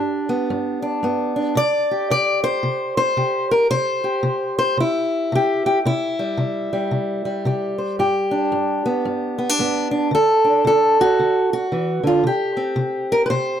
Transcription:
0.00 0.45 G2 medium
0.00 0.81 D4 medium
0.00 1.57 G4 medium
0.29 1.03 B3 medium
0.50 0.99 G2 medium
0.82 1.35 D4 medium
1.03 1.52 G2 medium
1.03 1.55 B3 medium
1.36 1.54 D4 soft
1.55 2.05 C3 medium
1.55 2.10 D5 loud
1.91 3.17 G4 soft
2.10 2.60 C3 medium
2.10 2.43 D5 medium
2.44 2.96 C5 loud
2.63 3.13 C3 medium
2.97 3.50 C5 loud
3.17 3.66 C3 medium
3.17 4.04 G4 soft
3.51 3.70 A#4 medium
3.71 4.20 C3 medium
3.71 4.56 C5 loud
4.04 5.35 G4 soft
4.23 4.73 C3 medium
4.59 4.79 C5 loud
4.77 5.27 C3 medium
4.77 5.85 E4 medium
5.32 5.81 C3 medium
5.32 5.65 G4 medium
5.66 5.78 G4 medium
5.85 6.34 C3 medium
5.85 7.78 E4 medium
6.19 6.72 G3 soft
6.37 6.87 C3 medium
6.73 7.24 G3 soft
6.91 7.41 C3 medium
7.25 8.85 G3 soft
7.45 7.94 C3 medium
7.45 7.96 G4 soft
7.78 7.96 C5 soft
7.99 8.48 G2 medium
7.99 10.10 G4 medium
8.31 9.38 D4 medium
8.52 9.01 G2 medium
8.86 9.37 B3 medium
9.05 9.54 G2 medium
9.38 9.49 B3 medium
9.49 9.90 D4 soft
9.59 10.08 G2 medium
9.59 10.10 B3 medium
9.91 10.10 D4 medium
10.11 10.61 D3 medium
10.11 10.66 A4 medium
10.44 10.98 D4 soft
10.65 11.14 D3 medium
10.65 11.52 A4 medium
11.01 11.52 F#4 medium
11.19 11.68 D3 medium
11.53 12.05 F#4 medium
11.72 12.03 E3 medium
12.03 12.25 D3 medium
12.03 12.26 F4 medium
12.24 12.74 C3 medium
12.24 13.60 G4 medium
12.57 13.60 C4 soft
12.76 13.26 C3 medium
13.12 13.25 A#4 medium
13.26 13.30 B4 medium
13.30 13.60 C3 medium
13.30 13.60 C5 loud

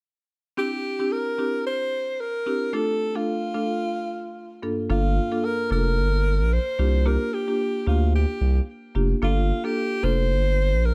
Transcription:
0.57 0.96 C4 medium
0.57 0.96 D4 medium
0.57 0.96 E4 medium
0.57 0.96 G4 loud
0.57 1.14 G4 loud
0.99 1.36 C4 medium
0.99 1.36 D4 medium
0.99 1.36 E4 medium
0.99 1.36 G4 medium
1.12 1.66 A#4 loud
1.38 1.64 C4 medium
1.38 1.64 D4 medium
1.38 1.64 E4 medium
1.38 1.64 G4 medium
1.67 2.22 C5 loud
2.20 2.76 A#4 loud
2.46 2.72 C4 medium
2.46 2.72 D4 medium
2.46 2.72 E4 medium
2.46 2.72 G4 medium
2.73 3.12 A3 medium
2.73 3.12 D4 medium
2.73 3.12 F4 medium
2.73 3.12 A4 loud
2.73 3.18 A4 loud
3.15 3.52 A3 medium
3.15 3.52 D4 medium
3.15 3.52 F4 medium
3.15 4.63 F4 medium
3.15 3.52 A4 medium
3.54 3.80 A3 medium
3.54 3.80 D4 medium
3.54 3.80 F4 medium
3.54 3.80 A4 medium
4.62 4.88 G2 medium
4.62 4.88 A#3 medium
4.62 4.88 D4 medium
4.62 4.88 F4 medium
4.62 4.88 A4 medium
4.90 5.20 G1 loud
4.90 5.28 A#3 loud
4.90 5.28 D4 medium
4.90 5.28 F4 medium
4.90 5.47 F4 loud
4.90 5.28 A4 loud
5.31 5.68 A#3 medium
5.31 5.68 D4 medium
5.31 5.68 F4 medium
5.31 5.68 A4 medium
5.45 5.71 A#4 loud
5.71 5.99 F1 loud
5.71 5.96 A#3 medium
5.71 5.96 D4 medium
5.71 5.96 F4 medium
5.71 5.96 A4 medium
5.71 6.55 A#4 loud
5.98 6.41 G1 loud
6.40 6.59 A#1 loud
6.53 7.09 C5 loud
6.79 7.17 C2 loud
6.79 7.04 A#3 medium
6.79 7.04 D4 medium
6.79 7.04 F4 medium
6.79 7.04 G4 medium
7.06 7.44 A#3 loud
7.06 7.44 D4 medium
7.06 7.44 F4 medium
7.06 7.45 G4 loud
7.06 7.36 A#4 loud
7.34 7.88 G4 loud
7.48 7.84 A#3 medium
7.48 7.84 D4 medium
7.48 7.84 F4 medium
7.48 7.84 G4 medium
7.87 8.26 D2 loud
7.87 8.12 A#3 medium
7.87 8.12 D4 medium
7.87 8.12 F4 medium
7.87 8.13 F4 medium
7.87 8.12 G4 medium
8.16 8.65 G4 medium
8.41 8.60 C2 loud
8.95 9.14 F1 medium
8.95 9.20 A#3 medium
8.95 9.20 D4 medium
8.95 9.20 F4 medium
8.95 9.21 G4 medium
9.22 9.52 G1 loud
9.22 9.60 A#3 medium
9.22 9.61 D4 medium
9.22 9.61 F4 medium
9.22 9.67 F4 loud
9.22 9.61 A4 loud
9.64 10.00 A#3 medium
9.64 10.00 D4 medium
9.64 10.01 F4 medium
9.64 10.06 G4 loud
9.64 10.01 A4 medium
10.03 10.32 F1 loud
10.03 10.28 A#3 medium
10.03 10.28 D4 medium
10.03 10.28 F4 medium
10.03 10.29 A4 medium
10.03 10.87 C5 loud
10.30 10.74 G1 loud
10.72 10.92 A#1 medium
10.86 10.94 A#4 loud

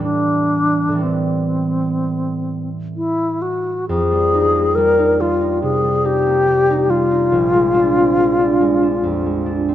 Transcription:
0.00 0.87 A2 soft
0.00 0.90 E3 soft
0.00 0.94 G3 soft
0.00 2.02 A3 soft
0.00 0.97 B3 soft
0.00 1.04 D4 medium
0.00 1.00 E4 soft
0.88 3.85 A2 soft
0.88 3.86 E3 soft
0.95 4.10 G3 soft
0.95 3.89 B3 soft
1.01 2.69 C4 medium
1.01 3.91 E4 soft
2.96 3.43 E4 medium
3.42 3.88 F#4 medium
3.89 7.36 F2 medium
3.89 4.77 G#4 loud
4.11 4.76 G3 medium
4.34 4.98 D#4 medium
4.56 6.25 A#3 soft
4.75 5.20 G3 medium
4.75 5.22 A#4 medium
4.99 5.40 D#4 medium
5.21 5.83 G3 medium
5.21 5.62 F4 medium
5.41 6.03 D#4 soft
5.62 7.35 C3 medium
5.62 6.07 G#4 medium
5.84 6.46 G3 soft
6.04 6.69 D#4 medium
6.04 6.92 G4 loud
6.26 9.75 A#3 soft
6.47 6.88 G3 medium
6.70 7.10 D#4 medium
6.90 7.35 G3 soft
6.90 9.62 F4 medium
7.11 7.35 D#4 soft
7.32 9.75 A#1 medium
7.53 8.16 G#3 soft
7.74 8.38 D4 medium
7.95 9.67 C4 soft
8.17 8.59 G#3 soft
8.39 8.81 D4 soft
8.61 9.24 G#3 soft
8.82 9.45 D4 soft
9.03 9.75 F2 medium
9.26 9.75 G#3 soft
9.46 9.75 D4 soft
9.68 9.75 C4 soft

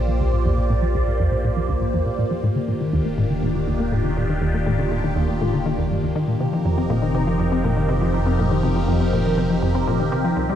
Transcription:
0.00 2.41 A#1 medium
0.00 6.36 A#3 medium
0.00 2.39 F4 medium
0.00 2.39 G4 medium
0.00 2.39 C5 medium
0.00 2.39 D5 medium
0.08 0.14 F3 medium
0.20 0.30 D2 loud
0.33 0.42 A2 medium
0.46 0.55 F2 loud
0.58 0.64 A#2 medium
0.70 0.76 A#2 loud
0.82 0.89 F3 medium
0.95 1.04 D2 loud
1.07 1.17 A2 medium
1.20 1.29 F2 loud
1.32 1.38 A#2 medium
1.44 1.51 A#2 loud
1.57 1.63 F3 medium
1.69 1.78 D2 loud
1.81 1.91 A2 medium
1.94 2.03 F2 loud
2.06 2.12 A#2 medium
2.19 2.25 A#2 loud
2.31 2.37 F3 medium
2.43 6.38 D#1 medium
2.43 2.53 A2 loud
2.43 6.36 D#3 medium
2.43 6.36 D4 medium
2.43 6.36 F4 medium
2.43 6.36 G4 medium
2.56 2.65 D3 medium
2.68 2.77 A#2 loud
2.81 2.87 D#3 medium
2.93 2.99 D#2 loud
3.06 3.12 A#3 medium
3.18 3.27 A2 loud
3.30 3.39 D3 medium
3.43 3.52 A#2 loud
3.55 3.61 D#3 medium
3.67 3.74 D#2 loud
3.80 3.86 A#3 medium
3.92 4.01 A2 loud
4.04 4.14 D3 medium
4.17 4.26 A#2 loud
4.29 4.36 D#3 medium
4.42 4.48 D#2 loud
4.54 4.60 A#3 medium
4.67 4.76 A2 loud
4.79 4.88 D3 medium
4.91 5.01 A#2 loud
5.04 5.10 D#3 medium
5.16 5.22 D#2 loud
5.29 5.35 A#3 medium
5.41 5.50 A2 loud
5.53 5.63 D3 medium
5.66 5.72 D#3 loud
5.78 5.84 D#2 medium
5.91 6.00 G2 medium
6.03 6.07 D#2 medium
6.16 6.25 D#3 loud
6.28 6.37 A#2 medium
6.40 10.34 F1 medium
6.40 6.50 C3 loud
6.40 10.33 F3 medium
6.40 10.55 C4 medium
6.40 10.33 D#4 medium
6.40 10.55 G4 medium
6.40 10.33 A#4 medium
6.53 6.59 F3 medium
6.65 6.71 F2 loud
6.78 6.84 C4 medium
6.90 6.99 A#2 loud
7.02 7.11 D#3 medium
7.15 7.24 C3 loud
7.27 7.33 F3 medium
7.40 7.46 F2 loud
7.52 7.58 C4 medium
7.64 7.74 A#2 loud
7.77 7.86 D#3 medium
7.89 7.98 C3 loud
8.02 8.08 F3 medium
8.14 8.20 F2 loud
8.26 8.32 C4 medium
8.39 8.48 A#2 loud
8.51 8.60 D#3 medium
8.63 8.73 C3 loud
8.76 8.82 F3 medium
8.88 8.94 F2 loud
9.01 9.07 C4 medium
9.13 9.22 A#2 loud
9.26 9.35 D#3 medium
9.38 9.47 C3 loud
9.50 9.56 F3 medium
9.63 9.69 F2 loud
9.75 9.81 C4 medium
9.88 9.97 A#2 loud
10.00 10.09 D#3 medium
10.12 10.21 C3 loud
10.24 10.31 F3 medium
10.37 10.55 C2 medium
10.37 10.43 C2 loud
10.37 10.55 D#4 medium
10.50 10.55 G3 medium

